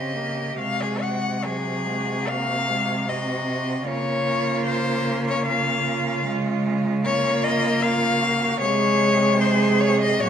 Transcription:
Already playing: C#3 C4 G4 D#5
0.16 A#3
0.57 C3 G#3 F#4 F5
0.82 G#4
1.02 F#5
1.41 F#3 F#4 G#4
1.85 G#3
2.28 A#3 F5
2.69 G#3
3.08 C4 F#4 D#5
3.83 C#3 A#3 F4 C#5
4.66 C5
5.28 C#5
5.45 F4 F5
6.25 G#3
7.02 A#3 F4 C#5
7.44 D#5
7.82 F4 F5
8.19 F#4
8.59 C3 G#3 G#4 C#5
9.38 G#4 C5
9.81 C#5
10.02 D#5
10.20 A#2 F#3 F#4 C#5

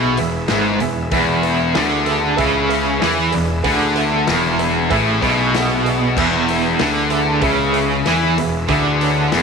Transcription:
Already playing: B1 B2 B3 E4 G#4 B4 E5
0.17 E1 E2 G#4 B4 E5, open hi-hat
0.48 G#1 G#2 G#4 B4 E5, snare, open hi-hat
0.80 E1 E2 G#4 B4 E5, open hi-hat
1.11 E1 E2 B3 E4 G#4 B4 E5, kick, open hi-hat
1.42 G#4 B4 F#5, open hi-hat
1.74 D2 D3 G#4 B4 E5, snare, open hi-hat
2.06 G#4 B4 E5, open hi-hat
2.37 C#2 C#3 G#4 B4 E5, kick, open hi-hat
2.69 G#4 B4 E5, open hi-hat
3.00 E2 E3 G#4 B4 E5, snare, open hi-hat
3.31 E1 E2 G#4 B4 D5, open hi-hat
3.63 D2 D3 B3 E4 G#4 B4 E5 F#5, kick, open hi-hat
3.95 G#4 B4 E5, open hi-hat
4.27 E1 E2 G#4 B4 E5, snare, open hi-hat
4.59 G#4 B4 E5, open hi-hat
4.90 A1 A2 G#4 B4 E5, kick, open hi-hat
5.22 B1 B2 G#4 B4 E5 B5, kick, open hi-hat
5.38 G#5
5.54 G#4 B4 E5 F#5, snare, open hi-hat
5.70 E5
5.85 G#4 B4 D5 E5, open hi-hat
6.16 E1 E2 B3 E4 G#4 B4 E5, kick, crash
6.48 G#4 B4 E5, open hi-hat
6.79 D2 D3 G#4 B4 E5, snare, open hi-hat
7.10 G#4 B4 E5, open hi-hat
7.41 C#2 C#3 G#4 B4 E5, kick, open hi-hat
7.72 G#4 B4 E5, open hi-hat
8.05 E2 E3 G#4 B4 E5, snare, open hi-hat
8.37 E1 E2 G#4 B4 E5, open hi-hat
8.68 D2 D3 E4 G#4 B4 E5, kick, open hi-hat
9.01 G#4 B4 C#5, open hi-hat
9.31 E1 E2 G#4 B4 E5, snare, open hi-hat

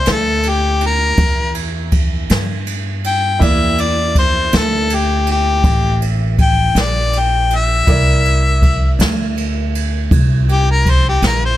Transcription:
Already playing: A#3 E4 C5 D5
0.06 D2, snare, ride
0.12 A4
0.43 ride
0.49 G4
0.81 ride
0.86 A#4
1.18 E2, kick, ride
1.55 ride
1.92 kick, ride
2.29 G2, snare, ride
2.67 ride
3.04 G5, ride
3.39 E2 A#3 E4 D5, kick, ride
3.44 E5
3.78 D5, ride
4.15 C5, kick, ride
4.53 D2 A4, snare, ride
4.90 ride
4.95 G4
5.27 ride
5.32 G4
5.64 A1, kick, ride
6.02 ride
6.38 G5, kick, ride
6.75 A#1, snare, ride
6.81 D5
7.13 ride
7.19 G5
7.50 ride
7.56 E5
7.87 C2 E4 A#4 D5, kick, ride
8.25 ride
8.62 kick, ride
8.99 D2, snare, ride
9.37 ride
9.75 ride
10.11 C2, kick, ride
10.49 G4, ride
10.72 A#4
10.86 kick, ride
10.90 C5
11.09 G4
11.22 A#1, snare, ride
11.27 A#4
11.45 C5

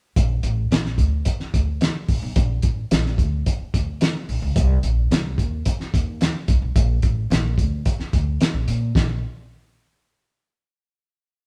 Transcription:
0.16 A#1, kick, closed hi-hat
0.43 A1, closed hi-hat
0.71 A#1, snare, closed hi-hat
0.86 snare
0.98 D2, kick, closed hi-hat
1.25 kick, closed hi-hat
1.40 muted upright bass stroke, snare
1.54 D2, kick, closed hi-hat
1.81 snare, closed hi-hat
2.08 A#1, kick, open hi-hat
2.22 B1
2.36 A#1, kick, closed hi-hat
2.62 A1, kick, closed hi-hat
2.91 A#1, snare, closed hi-hat
3.06 snare
3.18 D2, kick, closed hi-hat
3.46 kick, closed hi-hat
3.61 muted upright bass stroke
3.74 D2, kick, closed hi-hat
4.01 snare, closed hi-hat
4.29 A#1, open hi-hat
4.42 C#2
4.56 C2, kick, closed hi-hat
4.83 A#1, closed hi-hat
5.11 C2, snare, closed hi-hat
5.38 D#2, kick, closed hi-hat
5.66 kick, closed hi-hat
5.80 muted upright bass stroke, snare
5.94 D#2, kick, closed hi-hat
6.21 snare, closed hi-hat
6.48 C2, kick, closed hi-hat
6.62 B1
6.76 A#1, kick, closed hi-hat
7.02 A1, kick, closed hi-hat
7.30 A#1, snare, closed hi-hat
7.58 D2, kick, closed hi-hat
7.86 kick, closed hi-hat
7.99 muted upright bass stroke, snare
8.13 D2, kick, closed hi-hat
8.41 snare, closed hi-hat
8.54 A#1
8.68 A#2, closed hi-hat
8.95 A#1, kick, snare

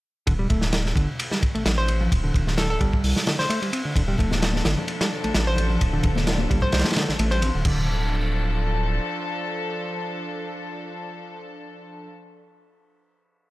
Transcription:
0.27 D1 D3, kick, ride
0.39 G3
0.50 D1 A3, kick, ride
0.61 snare
0.73 snare, ride
0.86 snare
0.96 G1 D3, kick, ride
1.19 ride
1.31 G3, snare
1.43 kick, ride
1.55 A1 A3, ride
1.65 A1 G3, snare, ride
1.78 C5
1.88 ride
2.01 F3
2.12 D1, kick, ride
2.24 D3
2.34 D1, kick, ride
2.47 snare
2.58 A4, snare, ride
2.70 A4
2.81 G1 G3, kick, ride
2.93 kick
3.04 C2, open hi-hat
3.16 snare
3.27 D3, snare, ride
3.39 D3 C5, snare
3.50 A3, ride
3.62 G3, ride
3.73 C4, ride
3.85 D3
3.95 D1 D3 F3 D4 A4, kick, ride
4.08 G3
4.18 D1 A3, kick, ride, low conga
4.31 snare, high conga
4.42 snare, ride
4.53 snare, high conga
4.65 G1 D3, snare, ride
4.77 low conga
4.88 ride
5.01 G3, snare, ride
5.24 A1 A3, ride
5.35 A1 G3, snare, ride
5.47 C5
5.56 ride, low conga
5.70 F3
5.81 D1, kick, ride
5.93 D3
6.03 D1, kick, ride, low conga
6.16 snare, high conga
6.27 snare, ride
6.38 high conga
6.50 G1 G3, kick, ride
6.61 C5, kick, low conga
6.72 C2 C5, snare, ride
6.79 snare, ride
6.84 snare, ride, high conga
6.91 snare, ride
6.96 D3, snare, ride
7.08 A1 D3, snare
7.19 A1 A3, ride
7.31 G3 C5, ride
7.42 C4, ride, low conga
7.55 D1 D3
7.65 D1 D3 F3 D4 A4, kick, crash

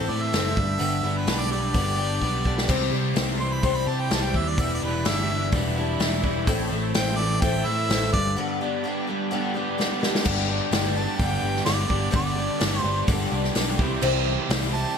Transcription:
Already playing: A2 E3 A3 C4 E4 A4 C5 E5 C6
0.00 A4
0.08 A2 A3 C4 E4 A4 D5
0.23 E5
0.32 F#1 E3 A3 C4 E4, snare, open hi-hat
0.56 G1 G2 G3 B3 D4 G4 B4 D5 B5, kick
0.78 G1 G2 D3 G3 B3 D4 G4, open hi-hat
1.03 G1 B3 D4 G4
1.07 G3
1.17 B4
1.26 B1 G3 B3 D4 G4, snare, open hi-hat
1.40 D5
1.51 G3 B3 D4 G4 D5
1.74 G1 G2 D3 G3 B3 D4 G4, kick, open hi-hat
1.96 G3 B3 D4 G4
2.21 B1 G3 B3 D4 G4, kick
2.44 B3 D4 G4, kick
2.49 G3
2.58 snare
2.68 C2 C3 E3 G3 C4 G4 C5 E5 C6, kick, open hi-hat, crash
2.91 C2 G3 C4 G4
3.14 C2 E3 G3 C4 G4, snare, open hi-hat
3.38 E3 C4 G4 C6
3.42 G3
3.53 B5
3.62 C2 C3 E3 G3 C4 G4 C6, kick, open hi-hat
3.76 B5
3.87 C3 G3 C4 G4 A5
4.01 G5
4.10 C2 E3 G3 C4 G4 A5, snare, open hi-hat
4.24 G5
4.34 D#2 E3 G3 C4 G4, kick
4.38 E5
4.49 D5
4.57 E1 E2 B2 E3 G3 D4 G4 D5 B5, kick, open hi-hat
4.61 E4 E5
4.75 D5
4.82 E1 G3 D4 E4 B4
4.86 E3
5.05 G1 E3 G3 D4 E5, snare, open hi-hat
5.09 D4 E4
5.29 E3 G3 D4 E4
5.33 E3
5.52 E1 E2 B2 E3 G3 D4, kick, open hi-hat
5.56 E4
5.76 E3 G3 D4 E4
5.99 E1 E3 G3 D4 E4, snare, open hi-hat
6.23 E3 G3 D4 E4, kick
6.45 A1 A2 E3 A3 E4 A4 C5 C6, kick, open hi-hat
6.49 C4
6.70 A1 A3 C4 E4
6.94 A1 E3 A3 C4 E4 G5, snare, open hi-hat
7.17 E3 A3 C4 E4 D5
7.40 A1 A2 E3 A3 C4 E4 G5, kick, open hi-hat
7.64 A2 A3 C4 E4 E5
7.87 A1 E3 A3 C4 E4, snare, open hi-hat
8.12 G1 G2 B3 D4 G4 B4 D5 B5, kick
8.16 G3
8.36 G2 D3 G3 B3 D4 G4
8.61 G3 B3 D4 G4
8.84 G3 B3 D4 G4
9.07 G3 B3 D4 G4
9.31 G2 D3 G3 B3 D4 G4
9.54 G3 B3 D4 G4
9.78 G3 B3 D4 G4, snare
10.01 B3 D4 G4, snare
10.05 G3
10.15 snare
10.23 G1 G2 D3 G3 B3 D4 G4 B4 D5 B5, kick, crash
10.46 G3 B3 D4 G4
10.71 G1 G3 B3 D4 G4, snare, open hi-hat
10.96 B3 D4 G4 A5
11.00 G3
11.19 G1 G2 D3 G3 B3 D4 G4 G5, kick, open hi-hat
11.42 G1 G3 B3 D4 G4
11.56 snare
11.65 G1 G3 B3 D4 G4 D5, snare, open hi-hat
11.88 G1 G3 B3 D4 G4, kick
12.11 G1 G2 D3 G3 B3 D4 G4, kick, open hi-hat
12.16 D5
12.35 G3 B3 D4 G4
12.59 G1 G3 B3 D4 G4, snare, open hi-hat
12.80 G1 D4 G4 C5
12.84 G3 B3
13.07 G1 G2 D3 G3 B3 D4 G4, kick, open hi-hat
13.30 C2 G3 B3 D4 G4
13.44 snare
13.55 B1 G3 B3 D4 G4, snare, open hi-hat
13.78 C2 C3 E3 G3 C4 E4 G4 C5 E5 C6, kick
14.01 C2 C3 E3 G3 C4 E4 G4, crash
14.26 G3 E4 G4
14.30 C4
14.49 C2 E3 G3 C4 E4 G4, snare, open hi-hat
14.73 G3 C4 E4 G4 A5

